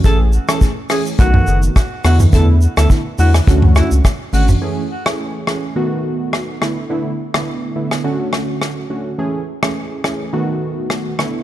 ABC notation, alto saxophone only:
X:1
M:4/4
L:1/16
Q:"Swing 16ths" 1/4=105
K:A
V:1 name="Alto saxophone"
A z2 A z2 G z F3 z3 F z | A z2 A z2 F z3 E z3 F z | z16 | z16 |
z16 |]